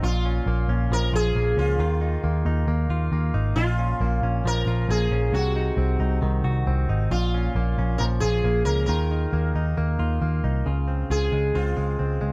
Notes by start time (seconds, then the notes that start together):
0.03 A#1 A#2 F4
0.25 C#4
0.46 A#1 A#3
0.68 A#1 C#4
0.91 A#1 F3 A#4
1.13 A#1 F4 G#4
1.35 A#1 A#3
1.57 C#2 C#4 F4
1.79 D#2 D#3 F4
2.01 D#4
2.24 D#2 A#3
2.45 D#2 D#4
2.67 D#2 A#3
2.89 D#2 F4
3.12 D#2 A#3
3.34 G#1 D#4
3.56 A#1 A#2 F4
3.79 C#4
4.00 A#1 A#3
4.22 A#1 C#4
4.44 A#1 F3 A#4
4.66 A#1 F4
4.89 A#1 A#3 G#4
5.11 A#1 C#4
5.33 C2 C3 F#4
5.56 D#4
5.77 C2 C4
6.00 C2 D#4
6.22 C2 D#3
6.44 C2 F#4
6.67 C2 C4
6.89 G#1 D#4
7.11 A#1 A#2 F4
7.34 C#4
7.55 A#1 A#3
7.78 A#1 C#4
7.98 A#1 F3 A#4
8.20 A#1 F4 G#4
8.44 A#1 A#3
8.65 C#2 C#4 A#4
8.86 D#2 D#3 F4 A#4
9.11 D#4
9.33 D#2 A#3
9.55 D#2 D#4
9.78 D#2 A#3
9.99 D#2 F4
10.22 D#2 A#3
10.44 C2 D#4
10.66 C#2 C#3 F4
10.88 C4
11.10 C#2 F4 G#4
11.32 C#2 G#3
11.55 C#2 C4 F4
11.77 C#2 G#3
11.99 C#2 C4
12.21 C#2 G#3